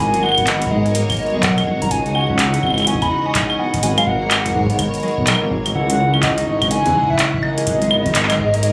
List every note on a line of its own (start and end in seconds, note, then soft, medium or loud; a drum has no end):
0.00 0.66 G#1 loud
0.00 7.42 G#3 medium
0.00 0.44 A#3 medium
0.00 2.29 C#4 loud
0.00 0.53 E4 medium
0.00 8.72 F#4 medium
0.00 1.09 G#4 medium
0.00 0.85 C#5 medium
0.00 0.64 D#5 loud
0.00 0.24 G#5 loud
0.11 0.22 G#3 medium
0.11 1.91 A#4 medium
0.11 closed hi-hat soft
0.22 0.52 G#3 medium
0.22 2.59 C#5 medium
0.22 0.72 F#5 loud
0.22 claves soft
0.26 claves soft
0.29 claves soft
0.32 claves medium
0.35 1.01 B3 medium
0.35 kick loud
0.35 closed hi-hat soft
0.35 claves medium
0.47 1.96 D#3 medium
0.47 clap loud
0.47 closed hi-hat medium
0.62 closed hi-hat medium
0.66 kick loud
0.71 1.02 G#2 loud
0.71 1.33 G#3 loud
0.71 1.44 D#5 loud
0.86 closed hi-hat soft
0.95 3.65 A#3 medium
0.95 closed hi-hat medium
1.10 1.66 G#4 medium
1.10 kick loud
1.10 closed hi-hat soft
1.10 claves medium
1.12 closed hi-hat soft
1.14 closed hi-hat soft
1.17 closed hi-hat soft
1.19 closed hi-hat soft
1.23 closed hi-hat soft
1.26 closed hi-hat soft
1.30 1.59 B1 medium
1.30 1.57 G#3 loud
1.30 closed hi-hat soft
1.43 2.05 D#4 medium
1.43 1.57 F#5 loud
1.43 kick loud
1.43 clap loud
1.43 closed hi-hat medium
1.58 1.68 D#1 medium
1.58 1.96 G#3 medium
1.58 1.80 F#5 medium
1.58 closed hi-hat soft
1.58 claves medium
1.67 1.83 G#1 medium
1.67 3.94 G#4 medium
1.82 1.88 C#2 loud
1.82 1.93 A#5 loud
1.82 kick loud
1.82 closed hi-hat medium
1.91 2.58 C#2 loud
1.91 3.59 C#3 medium
1.91 2.17 G#5 loud
1.91 kick loud
1.91 closed hi-hat medium
2.06 2.60 D#4 medium
2.06 closed hi-hat soft
2.15 3.25 C#5 medium
2.15 2.88 F#5 loud
2.15 claves soft
2.18 3.59 E3 medium
2.18 claves soft
2.21 claves soft
2.24 claves soft
2.30 2.39 C#4 medium
2.30 4.48 D#5 medium
2.30 kick loud
2.39 2.87 C#4 medium
2.39 clap loud
2.39 closed hi-hat medium
2.54 3.17 E4 medium
2.54 closed hi-hat medium
2.63 2.95 G#1 loud
2.63 3.64 G#3 medium
2.63 kick loud
2.63 claves soft
2.67 claves soft
2.70 claves soft
2.74 closed hi-hat soft
2.74 claves soft
2.78 claves medium
2.80 claves medium
2.82 claves medium
2.85 3.34 C#4 loud
2.85 3.03 G#5 loud
2.85 closed hi-hat medium
2.85 claves medium
2.94 kick loud
3.02 3.08 E2 medium
3.02 3.27 B5 loud
3.02 closed hi-hat soft
3.02 claves medium
3.11 5.81 D#4 medium
3.26 5.17 C#5 medium
3.26 3.61 G#5 loud
3.35 3.49 C#4 medium
3.35 kick loud
3.35 clap loud
3.35 closed hi-hat medium
3.50 6.13 C#4 medium
3.50 claves soft
3.59 4.28 B3 medium
3.59 3.84 F#5 medium
3.66 5.75 A#4 medium
3.74 4.78 D#3 medium
3.74 kick loud
3.74 closed hi-hat medium
3.83 4.50 G#1 loud
3.83 3.97 G#5 loud
3.83 closed hi-hat medium
3.98 4.45 G#3 loud
3.98 6.43 C#5 medium
3.98 4.08 F5 medium
3.98 closed hi-hat soft
3.98 claves medium
4.07 5.03 F#5 loud
4.07 kick loud
4.22 4.76 A#3 medium
4.31 5.41 G#4 medium
4.31 clap loud
4.31 closed hi-hat medium
4.31 claves medium
4.46 4.54 G#3 medium
4.46 kick soft
4.46 closed hi-hat medium
4.48 kick medium
4.50 kick medium
4.53 4.86 G#2 loud
4.53 4.84 G#3 medium
4.53 kick medium
4.55 kick medium
4.59 kick medium
4.62 kick medium
4.66 5.33 B3 medium
4.66 kick medium
4.66 closed hi-hat soft
4.79 5.80 D#3 medium
4.79 kick loud
4.79 closed hi-hat medium
4.79 claves medium
4.94 closed hi-hat soft
5.00 5.50 G#3 loud
5.00 closed hi-hat soft
5.03 closed hi-hat soft
5.08 closed hi-hat soft
5.11 closed hi-hat soft
5.18 5.33 B1 medium
5.18 kick loud
5.27 7.43 A#3 medium
5.27 clap loud
5.27 closed hi-hat medium
5.27 claves soft
5.32 claves soft
5.35 claves medium
5.42 5.57 G#1 loud
5.42 7.57 G#4 medium
5.51 5.65 G#3 medium
5.51 kick loud
5.66 5.72 G#1 medium
5.66 5.81 G#3 medium
5.66 closed hi-hat medium
5.66 claves medium
5.75 6.42 C#2 loud
5.75 7.43 C#3 medium
5.75 6.44 E4 medium
5.75 6.24 F#5 loud
5.90 6.94 G#3 medium
5.90 closed hi-hat medium
5.99 7.43 E3 medium
6.13 6.61 C#4 loud
6.13 8.32 F#5 medium
6.13 claves medium
6.23 6.72 D#5 loud
6.23 kick loud
6.23 clap loud
6.23 closed hi-hat medium
6.38 6.92 D#4 medium
6.38 closed hi-hat medium
6.47 6.78 G#1 loud
6.47 8.38 C#5 medium
6.62 6.71 C#4 medium
6.62 kick loud
6.62 closed hi-hat soft
6.62 claves medium
6.71 7.19 C#4 medium
6.71 7.11 G#5 loud
6.71 closed hi-hat medium
6.86 6.92 E2 medium
6.86 8.12 E4 medium
6.86 closed hi-hat soft
6.95 7.48 G#3 medium
6.95 kick medium
7.03 kick medium
7.10 7.44 E5 loud
7.10 kick medium
7.19 8.72 C#4 loud
7.19 clap loud
7.19 closed hi-hat medium
7.34 kick loud
7.43 8.72 G#3 medium
7.43 7.97 A#3 medium
7.43 8.72 D#5 loud
7.43 claves medium
7.58 8.63 G#4 medium
7.58 closed hi-hat medium
7.67 8.34 G#1 loud
7.67 7.81 G#3 medium
7.67 kick loud
7.67 closed hi-hat medium
7.79 8.08 G#3 medium
7.79 8.72 A#4 medium
7.79 closed hi-hat soft
7.91 8.60 B3 medium
7.91 claves medium
8.06 8.72 D#3 medium
8.06 kick loud
8.06 closed hi-hat soft
8.15 8.72 C#5 medium
8.15 clap loud
8.15 closed hi-hat medium
8.23 clap medium
8.30 8.72 G#3 loud
8.30 clap medium
8.30 closed hi-hat medium
8.30 claves medium
8.39 8.71 G#2 loud
8.39 kick loud
8.54 8.72 A#3 medium
8.54 closed hi-hat soft
8.63 8.72 G#4 medium
8.63 closed hi-hat medium